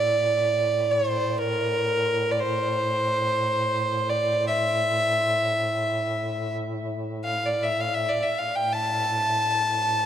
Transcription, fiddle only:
Already playing: D5
0.91 C#5
1.09 C5
1.38 A#4
2.31 D5
2.40 C5
4.10 D5
4.48 E5
7.25 F5
7.46 D5
7.63 E5
7.81 F5
7.94 E5
8.09 D5
8.23 E5
8.38 F5
8.55 G5
8.72 A5

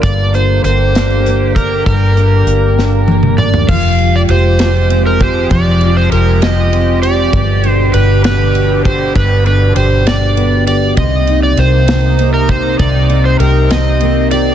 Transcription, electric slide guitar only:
0.03 D5
0.35 C5
0.65 C5
1.56 A#4
1.87 A#4
3.39 D5
3.69 F5
4.16 D5
4.31 C5
5.06 A#4
5.22 C5
5.52 D5
5.97 C5
6.12 A#4
6.42 D#5
7.02 D5
7.69 C5
7.94 B4
8.25 B4
8.86 C5
9.16 B4
9.47 B4
9.76 C5
10.07 D5
10.67 D5
10.97 D#5
11.43 D5
11.59 C5
12.34 A#4
12.50 C5
12.80 D5
13.25 C5
13.40 A#4
13.71 D#5
14.31 D5

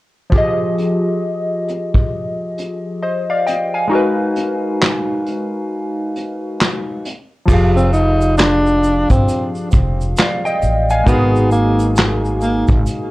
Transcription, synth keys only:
0.30 F3 F4 G4
0.36 G#4 D#5
3.03 C5 D#5
3.30 D5 F5
3.47 D#5 G5
3.74 F5 G#5
3.88 G#3 D#4 F#4
3.93 A#4 B4
7.46 F3 F4
7.50 G4 G#4 F5
10.18 D5 F5
10.45 D#5 G5
10.90 F5 G#5
11.04 G#3 D#4 F#4
11.10 G#4 A#4

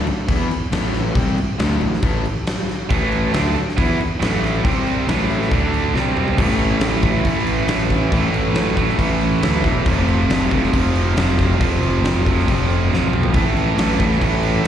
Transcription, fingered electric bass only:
0.07 muted fingered electric bass stroke
0.29 E2
0.51 muted fingered electric bass stroke
0.72 A1
1.15 C2
1.37 muted fingered electric bass stroke
1.59 D2
1.81 A1
2.03 A1
2.90 A1
3.34 D2
3.56 muted fingered electric bass stroke
3.78 E2
4.01 muted fingered electric bass stroke
4.22 A1
4.64 C2
5.08 A1
5.51 D2
5.94 C2
6.38 A1
6.81 A1
7.03 A1
7.25 A1
7.68 A1
8.12 A1
8.32 A1
8.54 A1
8.99 A1
9.42 D2
9.64 E1
9.86 F1
10.29 F1
10.52 F1
10.74 F1
11.17 F1
11.61 F1
11.82 F1
12.03 F1
12.48 F1
12.91 A1
13.13 B1
13.34 A1
13.77 A1
14.00 A1
14.22 A1

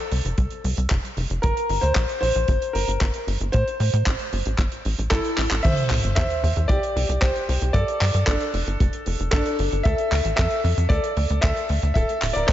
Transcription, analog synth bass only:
0.12 C2
0.25 F1
0.38 C2
0.64 C2
0.77 C2
0.91 F1
1.17 F1
1.30 F1
1.44 G1
1.69 G1
1.83 D2
1.96 A#1
2.22 A#1
2.35 A#1
2.48 G1
2.75 G1
2.88 G1
3.01 G1
3.27 G1
3.40 G1
3.54 A2
3.80 A2
3.93 A2
4.07 A1
4.33 G1
4.46 A1
4.58 G1
4.85 A1
4.98 A1
5.11 A1
5.38 A1
5.51 A1
5.65 C2
5.90 C2
6.04 G1
6.17 E2
6.43 E2
6.56 E2
6.69 C2
6.96 C2
7.09 C2
7.22 C2
7.49 C2
7.62 C2
7.74 G2
8.01 G2
8.14 G2
8.27 G1
8.54 F1
8.67 G1
8.80 F1
9.06 F1
9.20 F1
9.33 G1
9.59 G1
9.72 G1
9.85 D2
10.12 D2
10.25 A1
10.39 F2
10.64 F2
10.77 F2
10.90 D2
11.17 D2
11.30 D2
11.43 D2
11.69 D2
11.83 D2
11.95 D1
12.22 D1
12.35 D1
12.49 D2

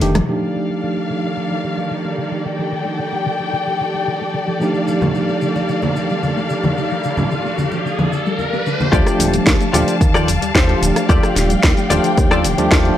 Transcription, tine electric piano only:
0.01 D#3 A3 D4 G4
0.28 F3 A3 D4 D#4 G4
4.60 F3 A3 D4 D#4 G4
8.92 F3 A3 D4 G4
9.74 F3 A3 D4 G4
10.68 F3 A3 D4 G4
11.90 F3 A3 D4 G4
12.58 F3 A3 D4 G4
12.71 F3 A3

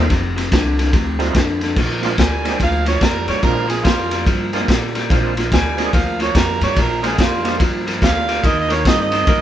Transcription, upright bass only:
0.10 F1
0.52 C2
0.93 D2
1.35 F2
1.76 A#1
2.18 D2
2.59 D2
3.01 F2
3.28 G2
3.43 A#1
3.84 F2
4.26 G2
4.68 A#2
5.10 A#1
5.52 D2
5.93 D2
6.35 F2
6.61 G2
6.76 A#1
7.18 F2
7.60 G2
8.01 D2
8.43 D#2
8.85 G2
9.27 G2

